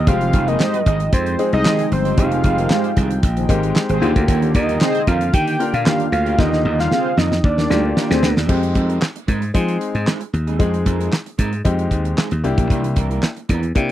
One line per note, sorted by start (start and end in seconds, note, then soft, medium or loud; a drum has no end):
0.07 0.29 F1 loud
0.07 0.21 D#3 medium
0.07 3.98 F3 medium
0.07 0.58 G#3 medium
0.07 3.98 G#3 medium
0.07 0.21 G#3 medium
0.07 0.58 C4 medium
0.07 0.20 C4 medium
0.07 3.98 D#4 medium
0.07 0.59 D#4 medium
0.07 0.59 G4 medium
0.07 0.20 G4 loud
0.07 0.50 F5 loud
0.07 8.45 G5 medium
0.07 kick loud
0.07 closed hi-hat medium
0.21 0.31 D#3 medium
0.21 0.31 C4 medium
0.21 0.31 G#4 medium
0.21 muted clean electric guitar stroke soft
0.21 closed hi-hat medium
0.33 0.56 F1 medium
0.33 0.45 D#3 medium
0.33 0.45 G#3 medium
0.33 0.45 C4 medium
0.33 0.46 G#4 medium
0.33 kick medium
0.33 closed hi-hat medium
0.47 0.58 D#3 soft
0.47 0.58 G#3 medium
0.47 0.57 A#3 medium
0.47 0.58 C4 medium
0.47 0.57 G4 medium
0.47 0.57 G#4 medium
0.47 0.57 A#4 medium
0.47 0.87 D#5 loud
0.47 closed hi-hat medium
0.60 0.81 G#3 loud
0.60 0.81 G4 loud
0.60 0.81 C5 loud
0.60 snare loud
0.60 clap medium
0.73 muted clean electric guitar stroke medium
0.73 closed hi-hat medium
0.85 1.08 G#1 medium
0.85 1.00 D#3 medium
0.85 0.99 G#3 medium
0.85 0.99 C4 medium
0.85 0.99 G#4 medium
0.85 1.11 D#5 loud
0.85 kick medium
0.85 closed hi-hat medium
0.99 muted clean electric guitar stroke soft
0.99 closed hi-hat medium
1.12 1.35 F2 loud
1.12 1.51 C5 loud
1.12 muted clean electric guitar stroke soft
1.12 kick loud
1.12 closed hi-hat medium
1.26 muted clean electric guitar stroke soft
1.26 closed hi-hat medium
1.39 1.78 G#3 medium
1.39 1.78 C4 medium
1.39 1.78 D#4 medium
1.39 1.78 G#4 medium
1.39 closed hi-hat medium
1.52 1.63 C2 medium
1.52 1.89 D#5 loud
1.52 muted clean electric guitar stroke soft
1.52 closed hi-hat soft
1.64 1.79 D#3 medium
1.64 1.86 D#3 medium
1.64 1.78 G#3 medium
1.64 1.78 C4 loud
1.64 1.86 C4 medium
1.64 1.77 G4 loud
1.64 1.86 G#4 loud
1.64 snare loud
1.64 clap medium
1.79 muted clean electric guitar stroke soft
1.79 closed hi-hat medium
1.91 2.14 G1 medium
1.91 2.20 C5 medium
1.91 muted clean electric guitar stroke soft
1.91 closed hi-hat medium
2.04 2.16 D#3 medium
2.04 2.16 G#3 medium
2.04 2.15 C4 medium
2.04 2.15 G4 medium
2.04 closed hi-hat medium
2.17 2.40 F1 loud
2.17 2.32 D#3 medium
2.17 2.31 G#3 medium
2.17 2.69 G#3 medium
2.17 2.69 C4 medium
2.17 2.31 C4 medium
2.17 2.69 D#4 medium
2.17 2.69 G4 medium
2.17 2.30 G4 medium
2.17 3.50 F5 loud
2.17 kick loud
2.17 closed hi-hat medium
2.31 2.42 D#3 medium
2.31 2.42 C4 medium
2.31 2.42 G#4 medium
2.31 muted clean electric guitar stroke medium
2.31 closed hi-hat medium
2.43 2.66 F1 loud
2.43 2.55 D#3 medium
2.43 2.55 G#3 medium
2.43 2.56 C4 medium
2.43 2.56 G#4 medium
2.43 kick medium
2.43 closed hi-hat medium
2.58 2.69 D#3 soft
2.58 2.68 G#3 medium
2.58 2.68 A#3 medium
2.58 2.68 C4 medium
2.58 2.68 G4 medium
2.58 2.68 G#4 medium
2.58 2.68 A#4 medium
2.58 closed hi-hat medium
2.70 2.92 G#3 loud
2.70 2.92 G4 loud
2.70 2.92 C5 loud
2.70 snare loud
2.70 clap medium
2.84 muted clean electric guitar stroke soft
2.84 closed hi-hat medium
2.96 3.19 C2 medium
2.96 3.11 D#3 medium
2.96 3.10 G#3 medium
2.96 3.10 C4 medium
2.96 3.10 G#4 medium
2.96 kick medium
2.96 closed hi-hat medium
3.10 muted clean electric guitar stroke medium
3.10 closed hi-hat medium
3.23 3.45 A#1 loud
3.23 muted clean electric guitar stroke soft
3.23 kick loud
3.23 closed hi-hat medium
3.36 3.47 D#3 medium
3.36 3.47 C4 medium
3.36 3.47 G#4 medium
3.36 muted clean electric guitar stroke soft
3.36 closed hi-hat medium
3.49 3.71 G#1 medium
3.49 3.88 G#3 medium
3.49 3.61 A#3 medium
3.49 3.88 C4 medium
3.49 3.88 D#4 medium
3.49 3.61 G4 medium
3.49 3.88 G4 loud
3.49 3.61 A#4 loud
3.49 kick medium
3.49 closed hi-hat medium
3.63 muted clean electric guitar stroke soft
3.63 closed hi-hat medium
3.75 muted clean electric guitar stroke soft
3.75 snare loud
3.75 clap medium
3.89 4.00 G#1 medium
3.89 4.00 D#3 medium
3.89 4.00 G#3 medium
3.89 4.11 C4 loud
3.89 4.00 C4 medium
3.89 3.99 G4 medium
3.89 4.11 G#4 loud
3.89 4.11 C5 loud
3.89 closed hi-hat medium
4.01 4.14 D#2 loud
4.01 4.86 D3 medium
4.01 8.45 D3 medium
4.01 4.16 D#3 medium
4.01 4.86 A#3 loud
4.01 8.45 A#3 medium
4.01 4.15 A#3 medium
4.01 4.15 D4 loud
4.01 4.87 F4 medium
4.01 4.87 G4 loud
4.01 4.14 G4 loud
4.01 closed hi-hat medium
4.16 4.26 D2 medium
4.16 muted clean electric guitar stroke soft
4.16 kick loud
4.16 closed hi-hat medium
4.28 4.50 D#2 loud
4.28 4.43 D#3 medium
4.28 4.42 A#3 medium
4.28 4.41 D4 medium
4.28 4.41 G4 loud
4.28 kick loud
4.28 closed hi-hat medium
4.42 4.52 D#3 medium
4.42 4.52 D4 medium
4.42 4.52 G4 medium
4.42 muted clean electric guitar stroke soft
4.42 closed hi-hat medium
4.54 4.77 D#2 loud
4.54 4.66 D#3 medium
4.54 4.66 A#3 medium
4.54 4.66 D4 medium
4.54 4.66 A#4 medium
4.54 5.09 D#5 loud
4.54 kick loud
4.54 closed hi-hat medium
4.68 4.79 D#3 medium
4.68 4.78 G3 medium
4.68 4.79 A#3 medium
4.68 4.79 D4 medium
4.68 4.78 D#4 medium
4.68 4.78 A#4 medium
4.68 closed hi-hat medium
4.81 5.02 C4 loud
4.81 5.02 G#4 loud
4.81 5.02 C5 loud
4.81 snare loud
4.81 clap medium
4.94 muted clean electric guitar stroke medium
4.94 closed hi-hat medium
5.07 5.29 F2 loud
5.07 5.21 D#3 medium
5.07 5.21 A#3 medium
5.07 5.20 D4 medium
5.07 5.20 A#4 medium
5.07 5.33 F5 loud
5.07 kick medium
5.07 closed hi-hat medium
5.21 muted clean electric guitar stroke soft
5.21 closed hi-hat medium
5.33 5.56 D#3 loud
5.33 5.76 G5 loud
5.33 kick loud
5.33 closed hi-hat medium
5.47 muted clean electric guitar stroke medium
5.47 closed hi-hat medium
5.59 5.99 A#3 medium
5.59 5.99 D4 medium
5.59 5.99 F4 medium
5.59 5.99 A#4 medium
5.59 closed hi-hat medium
5.73 5.84 A#2 loud
5.73 6.12 F5 loud
5.73 muted clean electric guitar stroke soft
5.73 closed hi-hat soft
5.86 6.00 D#3 medium
5.86 6.07 D#3 medium
5.86 6.00 A#3 loud
5.86 6.07 D4 medium
5.86 5.99 D4 medium
5.86 6.07 G4 loud
5.86 5.98 G4 medium
5.86 snare loud
5.86 clap loud
6.00 muted clean electric guitar stroke soft
6.00 closed hi-hat medium
6.12 6.34 D2 loud
6.12 6.41 F5 medium
6.12 muted clean electric guitar stroke soft
6.12 closed hi-hat medium
6.25 6.36 D#3 medium
6.25 6.37 A#3 medium
6.25 6.36 D4 medium
6.25 6.36 G4 medium
6.25 closed hi-hat soft
6.38 6.61 D#2 loud
6.38 6.90 D3 medium
6.38 6.53 D#3 loud
6.38 6.90 A#3 medium
6.38 6.52 A#3 medium
6.38 6.51 D4 loud
6.38 6.90 F4 medium
6.38 6.90 G4 medium
6.38 6.51 G4 loud
6.38 6.79 D#5 loud
6.38 kick loud
6.38 snare medium
6.52 6.63 D#3 medium
6.52 6.63 D4 medium
6.52 6.63 G4 medium
6.52 muted clean electric guitar stroke soft
6.52 snare medium
6.64 6.87 D#2 loud
6.64 6.76 D#3 medium
6.64 6.76 A#3 medium
6.64 6.77 D4 medium
6.64 6.77 A#4 medium
6.78 6.89 D#3 medium
6.78 6.89 G3 medium
6.78 6.89 A#3 medium
6.78 6.89 D4 medium
6.78 6.89 D#4 medium
6.78 6.89 A#4 medium
6.78 7.20 F5 loud
6.78 snare medium
6.91 7.12 C4 loud
6.91 7.12 G#4 loud
6.91 7.12 C5 loud
6.91 snare medium
7.05 muted clean electric guitar stroke soft
7.17 7.40 F2 medium
7.17 7.32 D#3 medium
7.17 7.31 A#3 medium
7.17 7.30 D4 medium
7.17 7.31 A#4 loud
7.17 7.44 D#5 medium
7.17 snare medium
7.31 muted clean electric guitar stroke medium
7.31 snare medium
7.43 7.66 D#2 medium
7.43 8.46 D5 medium
7.43 muted clean electric guitar stroke soft
7.43 kick loud
7.58 7.68 D#3 medium
7.58 7.68 D4 medium
7.58 7.68 G4 medium
7.58 muted clean electric guitar stroke soft
7.58 snare medium
7.70 7.92 D2 medium
7.70 7.82 G3 medium
7.70 8.09 A#3 medium
7.70 8.09 D4 medium
7.70 7.82 D#4 medium
7.70 8.09 F4 medium
7.70 8.09 G4 medium
7.70 7.82 A#4 loud
7.70 snare medium
7.84 muted clean electric guitar stroke soft
7.96 8.11 D#3 medium
7.96 8.10 A#3 medium
7.96 8.10 D4 medium
7.96 8.09 G4 medium
7.96 snare loud
8.10 8.21 D2 medium
8.10 8.32 C4 loud
8.10 8.32 G#4 loud
8.10 8.32 C5 loud
8.10 muted clean electric guitar stroke soft
8.10 snare medium
8.23 8.34 D2 loud
8.23 snare loud
8.36 8.47 D#2 loud
8.36 8.48 D#3 medium
8.36 8.47 A#3 medium
8.36 8.47 D4 medium
8.36 8.47 G4 medium
8.36 snare loud
8.48 8.71 F2 loud
8.48 8.63 G#3 medium
8.48 9.00 G#3 medium
8.48 9.00 C4 medium
8.48 8.63 C4 medium
8.48 9.00 D#4 medium
8.48 8.62 D#4 medium
8.48 9.00 G4 medium
8.48 8.62 G#4 medium
8.48 kick loud
8.48 crash medium
8.63 muted clean electric guitar stroke soft
8.63 closed hi-hat medium
8.75 8.98 F2 medium
8.75 8.87 G#3 medium
8.75 8.87 C4 medium
8.75 8.87 D#4 medium
8.75 8.88 A#4 medium
8.75 kick medium
8.75 closed hi-hat medium
8.89 9.00 G#3 soft
8.89 9.00 C4 medium
8.89 9.00 D#4 medium
8.89 8.99 A#4 medium
8.89 closed hi-hat medium
9.02 snare medium
9.02 clap medium
9.16 muted clean electric guitar stroke soft
9.16 closed hi-hat medium
9.27 9.50 G#2 medium
9.27 9.42 G#3 medium
9.27 9.41 C4 medium
9.27 9.41 D#4 medium
9.27 9.41 A#4 medium
9.27 kick medium
9.27 closed hi-hat medium
9.41 muted clean electric guitar stroke soft
9.41 closed hi-hat medium
9.54 9.77 F3 medium
9.54 10.05 G#3 medium
9.54 10.05 C4 medium
9.54 10.06 D#4 medium
9.54 10.06 G#4 medium
9.54 muted clean electric guitar stroke soft
9.54 kick loud
9.54 closed hi-hat medium
9.68 muted clean electric guitar stroke soft
9.68 closed hi-hat medium
9.81 closed hi-hat medium
9.94 10.05 G#2 medium
9.94 muted clean electric guitar stroke soft
9.94 closed hi-hat soft
10.06 10.21 G#3 medium
10.06 10.21 C4 medium
10.06 10.20 D#4 medium
10.06 10.19 G#4 medium
10.06 snare loud
10.06 clap medium
10.21 muted clean electric guitar stroke soft
10.21 closed hi-hat medium
10.33 10.60 D#2 medium
10.33 muted clean electric guitar stroke soft
10.33 closed hi-hat medium
10.47 10.58 G#3 soft
10.47 10.58 C4 medium
10.47 10.58 D#4 medium
10.47 10.57 G#4 medium
10.47 closed hi-hat soft
10.59 10.82 F2 medium
10.59 11.11 G#3 medium
10.59 10.74 G#3 medium
10.59 11.11 C4 medium
10.59 10.73 C4 medium
10.59 11.11 D#4 medium
10.59 10.73 D#4 medium
10.59 11.11 G#4 medium
10.59 10.72 G#4 medium
10.59 kick loud
10.59 closed hi-hat medium
10.73 muted clean electric guitar stroke soft
10.73 closed hi-hat medium
10.85 11.08 F2 medium
10.85 10.97 G#3 medium
10.85 10.97 C4 medium
10.85 10.98 D#4 medium
10.85 10.98 A#4 medium
10.85 kick medium
10.85 closed hi-hat medium
10.99 11.11 G#3 soft
10.99 11.10 C4 medium
10.99 11.10 D#4 medium
10.99 11.10 A#4 medium
10.99 closed hi-hat medium
11.13 snare loud
11.13 clap medium
11.26 muted clean electric guitar stroke soft
11.26 closed hi-hat soft
11.38 11.61 G#2 medium
11.38 11.53 G#3 medium
11.38 11.52 C4 medium
11.38 11.52 D#4 medium
11.38 11.52 A#4 medium
11.38 kick medium
11.38 closed hi-hat medium
11.52 muted clean electric guitar stroke soft
11.52 closed hi-hat soft
11.65 11.87 F2 medium
11.65 12.16 G#3 medium
11.65 12.16 C4 medium
11.65 12.16 D#4 medium
11.65 12.16 G4 medium
11.65 muted clean electric guitar stroke soft
11.65 kick loud
11.65 closed hi-hat medium
11.79 muted clean electric guitar stroke soft
11.79 closed hi-hat medium
11.91 12.13 D#2 medium
11.91 kick medium
11.91 closed hi-hat medium
12.05 muted clean electric guitar stroke soft
12.05 closed hi-hat soft
12.17 12.32 G#3 medium
12.17 12.31 C4 medium
12.17 12.30 D#4 medium
12.17 12.30 G#4 medium
12.17 snare loud
12.17 clap medium
12.31 12.42 D#2 medium
12.31 muted clean electric guitar stroke soft
12.31 closed hi-hat medium
12.43 12.56 C2 medium
12.43 13.28 A#3 medium
12.43 13.28 D4 medium
12.43 13.29 E4 medium
12.43 13.29 G4 loud
12.43 muted clean electric guitar stroke soft
12.43 closed hi-hat medium
12.57 12.68 A#1 medium
12.57 12.68 E3 soft
12.57 12.68 A#3 medium
12.57 12.68 D4 medium
12.57 12.68 G4 medium
12.57 kick loud
12.57 closed hi-hat soft
12.69 12.92 C2 loud
12.69 12.84 E3 medium
12.69 12.84 A#3 medium
12.69 12.83 D4 medium
12.69 12.82 G4 medium
12.69 kick loud
12.69 closed hi-hat medium
12.84 muted clean electric guitar stroke medium
12.84 closed hi-hat medium
12.96 13.19 C2 medium
12.96 13.08 E3 medium
12.96 13.08 A#3 medium
12.96 13.08 D4 medium
12.96 13.09 A#4 medium
12.96 kick medium
12.96 closed hi-hat medium
13.10 13.21 E3 medium
13.10 13.21 A#3 medium
13.10 13.21 D4 medium
13.10 13.20 A#4 medium
13.10 closed hi-hat medium
13.23 snare loud
13.23 clap medium
13.36 muted clean electric guitar stroke medium
13.36 closed hi-hat medium
13.49 13.71 E2 medium
13.49 13.64 E3 medium
13.49 13.63 A#3 medium
13.49 13.62 D4 medium
13.49 13.62 A#4 medium
13.49 kick medium
13.49 closed hi-hat medium
13.63 muted clean electric guitar stroke soft
13.63 closed hi-hat medium
13.75 13.92 C3 medium
13.75 13.92 A#3 medium
13.75 13.92 D4 medium
13.75 13.92 E4 medium
13.75 13.92 G4 medium
13.75 muted clean electric guitar stroke soft
13.75 kick loud
13.75 closed hi-hat medium